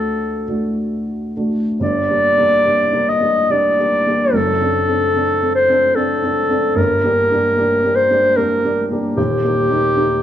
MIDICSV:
0, 0, Header, 1, 3, 480
1, 0, Start_track
1, 0, Key_signature, -2, "minor"
1, 0, Tempo, 886263
1, 979, Time_signature, 3, 2, 24, 8
1, 979, Tempo, 845070
1, 2419, Tempo, 803213
1, 5935, End_track
2, 0, Start_track
2, 0, Title_t, "Clarinet"
2, 0, Program_c, 0, 71
2, 0, Note_on_c, 0, 69, 62
2, 495, Note_off_c, 0, 69, 0
2, 983, Note_on_c, 0, 74, 91
2, 1706, Note_on_c, 0, 75, 73
2, 1714, Note_off_c, 0, 74, 0
2, 1946, Note_on_c, 0, 74, 81
2, 1954, Note_off_c, 0, 75, 0
2, 2418, Note_on_c, 0, 69, 81
2, 2427, Note_off_c, 0, 74, 0
2, 3136, Note_off_c, 0, 69, 0
2, 3140, Note_on_c, 0, 72, 81
2, 3379, Note_on_c, 0, 69, 81
2, 3388, Note_off_c, 0, 72, 0
2, 3864, Note_on_c, 0, 70, 83
2, 3873, Note_off_c, 0, 69, 0
2, 4577, Note_on_c, 0, 72, 85
2, 4586, Note_off_c, 0, 70, 0
2, 4822, Note_on_c, 0, 70, 84
2, 4831, Note_off_c, 0, 72, 0
2, 5136, Note_off_c, 0, 70, 0
2, 5303, Note_on_c, 0, 67, 100
2, 5935, Note_off_c, 0, 67, 0
2, 5935, End_track
3, 0, Start_track
3, 0, Title_t, "Grand piano"
3, 0, Program_c, 1, 0
3, 0, Control_c, 1, 64, 127
3, 0, Note_on_c, 1, 38, 45
3, 0, Note_on_c, 1, 57, 34
3, 0, Note_on_c, 1, 62, 33
3, 0, Note_on_c, 1, 66, 35
3, 236, Note_off_c, 1, 57, 0
3, 238, Note_off_c, 1, 62, 0
3, 238, Note_off_c, 1, 66, 0
3, 258, Note_on_c, 1, 57, 30
3, 260, Note_on_c, 1, 62, 32
3, 263, Note_on_c, 1, 66, 36
3, 717, Note_off_c, 1, 57, 0
3, 718, Note_off_c, 1, 62, 0
3, 720, Note_off_c, 1, 66, 0
3, 741, Note_on_c, 1, 57, 36
3, 742, Note_on_c, 1, 62, 34
3, 746, Note_on_c, 1, 66, 35
3, 959, Note_off_c, 1, 57, 0
3, 959, Note_off_c, 1, 62, 0
3, 961, Note_off_c, 1, 66, 0
3, 975, Note_on_c, 1, 31, 54
3, 981, Note_on_c, 1, 43, 58
3, 988, Control_c, 1, 64, 0
3, 993, Note_off_c, 1, 38, 0
3, 1088, Control_c, 1, 64, 127
3, 1135, Note_off_c, 1, 31, 0
3, 1138, Note_off_c, 1, 43, 0
3, 1145, Note_on_c, 1, 58, 39
3, 1146, Note_on_c, 1, 62, 40
3, 1149, Note_on_c, 1, 67, 43
3, 1287, Note_off_c, 1, 58, 0
3, 1288, Note_off_c, 1, 62, 0
3, 1290, Note_off_c, 1, 67, 0
3, 1303, Note_on_c, 1, 58, 43
3, 1307, Note_on_c, 1, 62, 43
3, 1307, Note_on_c, 1, 67, 49
3, 1445, Note_off_c, 1, 58, 0
3, 1447, Note_off_c, 1, 62, 0
3, 1447, Note_off_c, 1, 67, 0
3, 1460, Note_on_c, 1, 58, 38
3, 1460, Note_on_c, 1, 62, 40
3, 1464, Note_on_c, 1, 67, 40
3, 1602, Note_off_c, 1, 58, 0
3, 1602, Note_off_c, 1, 62, 0
3, 1604, Note_off_c, 1, 67, 0
3, 1616, Note_on_c, 1, 58, 41
3, 1619, Note_on_c, 1, 62, 39
3, 1619, Note_on_c, 1, 67, 43
3, 1761, Note_off_c, 1, 58, 0
3, 1763, Note_off_c, 1, 62, 0
3, 1763, Note_off_c, 1, 67, 0
3, 1774, Note_on_c, 1, 58, 41
3, 1779, Note_on_c, 1, 62, 39
3, 1781, Note_on_c, 1, 67, 43
3, 1922, Note_off_c, 1, 58, 0
3, 1925, Note_off_c, 1, 62, 0
3, 1926, Note_off_c, 1, 67, 0
3, 1938, Note_on_c, 1, 58, 45
3, 1942, Note_on_c, 1, 62, 45
3, 1943, Note_on_c, 1, 67, 51
3, 2086, Note_off_c, 1, 58, 0
3, 2088, Note_off_c, 1, 62, 0
3, 2089, Note_off_c, 1, 67, 0
3, 2104, Note_on_c, 1, 58, 43
3, 2106, Note_on_c, 1, 62, 44
3, 2108, Note_on_c, 1, 67, 46
3, 2248, Note_off_c, 1, 58, 0
3, 2249, Note_off_c, 1, 62, 0
3, 2250, Note_off_c, 1, 67, 0
3, 2262, Note_on_c, 1, 58, 45
3, 2266, Note_on_c, 1, 62, 46
3, 2269, Note_on_c, 1, 67, 49
3, 2403, Note_off_c, 1, 58, 0
3, 2405, Note_off_c, 1, 62, 0
3, 2407, Note_off_c, 1, 67, 0
3, 2412, Note_on_c, 1, 30, 56
3, 2418, Note_on_c, 1, 42, 60
3, 2429, Control_c, 1, 64, 0
3, 2518, Control_c, 1, 64, 127
3, 2571, Note_off_c, 1, 30, 0
3, 2574, Note_off_c, 1, 42, 0
3, 2582, Note_on_c, 1, 60, 40
3, 2586, Note_on_c, 1, 62, 43
3, 2586, Note_on_c, 1, 69, 46
3, 2724, Note_off_c, 1, 60, 0
3, 2726, Note_off_c, 1, 62, 0
3, 2726, Note_off_c, 1, 69, 0
3, 2740, Note_on_c, 1, 60, 41
3, 2743, Note_on_c, 1, 62, 44
3, 2746, Note_on_c, 1, 69, 48
3, 2883, Note_off_c, 1, 60, 0
3, 2885, Note_off_c, 1, 62, 0
3, 2887, Note_off_c, 1, 69, 0
3, 2905, Note_on_c, 1, 60, 40
3, 2906, Note_on_c, 1, 62, 39
3, 2909, Note_on_c, 1, 69, 44
3, 3048, Note_off_c, 1, 60, 0
3, 3049, Note_off_c, 1, 62, 0
3, 3050, Note_off_c, 1, 69, 0
3, 3068, Note_on_c, 1, 60, 42
3, 3070, Note_on_c, 1, 62, 39
3, 3072, Note_on_c, 1, 69, 42
3, 3211, Note_off_c, 1, 60, 0
3, 3212, Note_off_c, 1, 62, 0
3, 3213, Note_off_c, 1, 69, 0
3, 3226, Note_on_c, 1, 60, 42
3, 3228, Note_on_c, 1, 62, 45
3, 3231, Note_on_c, 1, 69, 45
3, 3371, Note_off_c, 1, 60, 0
3, 3372, Note_off_c, 1, 62, 0
3, 3374, Note_off_c, 1, 69, 0
3, 3389, Note_on_c, 1, 60, 51
3, 3390, Note_on_c, 1, 62, 53
3, 3392, Note_on_c, 1, 69, 53
3, 3532, Note_off_c, 1, 60, 0
3, 3533, Note_off_c, 1, 62, 0
3, 3534, Note_off_c, 1, 69, 0
3, 3548, Note_on_c, 1, 60, 47
3, 3553, Note_on_c, 1, 62, 44
3, 3555, Note_on_c, 1, 69, 48
3, 3692, Note_off_c, 1, 60, 0
3, 3695, Note_off_c, 1, 62, 0
3, 3696, Note_off_c, 1, 69, 0
3, 3709, Note_on_c, 1, 60, 48
3, 3711, Note_on_c, 1, 62, 49
3, 3713, Note_on_c, 1, 69, 52
3, 3854, Note_off_c, 1, 60, 0
3, 3855, Note_off_c, 1, 62, 0
3, 3856, Note_off_c, 1, 69, 0
3, 3859, Note_on_c, 1, 31, 58
3, 3864, Note_on_c, 1, 43, 65
3, 3879, Control_c, 1, 64, 0
3, 3989, Control_c, 1, 64, 127
3, 4021, Note_off_c, 1, 31, 0
3, 4023, Note_off_c, 1, 43, 0
3, 4030, Note_on_c, 1, 58, 46
3, 4034, Note_on_c, 1, 62, 43
3, 4037, Note_on_c, 1, 67, 53
3, 4174, Note_off_c, 1, 58, 0
3, 4176, Note_off_c, 1, 62, 0
3, 4178, Note_off_c, 1, 67, 0
3, 4195, Note_on_c, 1, 58, 50
3, 4197, Note_on_c, 1, 62, 49
3, 4198, Note_on_c, 1, 67, 54
3, 4336, Note_off_c, 1, 58, 0
3, 4337, Note_off_c, 1, 62, 0
3, 4338, Note_off_c, 1, 67, 0
3, 4350, Note_on_c, 1, 58, 44
3, 4354, Note_on_c, 1, 62, 44
3, 4356, Note_on_c, 1, 67, 50
3, 4493, Note_off_c, 1, 58, 0
3, 4496, Note_off_c, 1, 62, 0
3, 4496, Note_off_c, 1, 67, 0
3, 4513, Note_on_c, 1, 58, 44
3, 4514, Note_on_c, 1, 62, 49
3, 4517, Note_on_c, 1, 67, 49
3, 4656, Note_off_c, 1, 58, 0
3, 4656, Note_off_c, 1, 62, 0
3, 4658, Note_off_c, 1, 67, 0
3, 4668, Note_on_c, 1, 58, 48
3, 4671, Note_on_c, 1, 62, 46
3, 4671, Note_on_c, 1, 67, 55
3, 4813, Note_off_c, 1, 58, 0
3, 4814, Note_off_c, 1, 62, 0
3, 4814, Note_off_c, 1, 67, 0
3, 4828, Note_on_c, 1, 58, 55
3, 4831, Note_on_c, 1, 62, 55
3, 4833, Note_on_c, 1, 67, 53
3, 4972, Note_off_c, 1, 58, 0
3, 4973, Note_off_c, 1, 62, 0
3, 4975, Note_off_c, 1, 67, 0
3, 4990, Note_on_c, 1, 58, 48
3, 4991, Note_on_c, 1, 62, 45
3, 4994, Note_on_c, 1, 67, 55
3, 5132, Note_off_c, 1, 58, 0
3, 5133, Note_off_c, 1, 62, 0
3, 5134, Note_off_c, 1, 67, 0
3, 5149, Note_on_c, 1, 58, 55
3, 5153, Note_on_c, 1, 62, 57
3, 5153, Note_on_c, 1, 67, 59
3, 5291, Note_off_c, 1, 58, 0
3, 5293, Note_off_c, 1, 62, 0
3, 5293, Note_off_c, 1, 67, 0
3, 5297, Note_on_c, 1, 27, 64
3, 5306, Note_on_c, 1, 39, 64
3, 5315, Control_c, 1, 64, 0
3, 5416, Control_c, 1, 64, 127
3, 5455, Note_off_c, 1, 27, 0
3, 5459, Note_off_c, 1, 39, 0
3, 5465, Note_on_c, 1, 58, 47
3, 5469, Note_on_c, 1, 63, 44
3, 5470, Note_on_c, 1, 67, 56
3, 5607, Note_off_c, 1, 58, 0
3, 5609, Note_off_c, 1, 63, 0
3, 5609, Note_off_c, 1, 67, 0
3, 5625, Note_on_c, 1, 58, 53
3, 5626, Note_on_c, 1, 63, 55
3, 5629, Note_on_c, 1, 67, 58
3, 5766, Note_off_c, 1, 58, 0
3, 5767, Note_off_c, 1, 63, 0
3, 5768, Note_off_c, 1, 67, 0
3, 5782, Note_on_c, 1, 58, 44
3, 5783, Note_on_c, 1, 63, 49
3, 5785, Note_on_c, 1, 67, 58
3, 5924, Note_off_c, 1, 58, 0
3, 5924, Note_off_c, 1, 63, 0
3, 5925, Note_off_c, 1, 67, 0
3, 5935, End_track
0, 0, End_of_file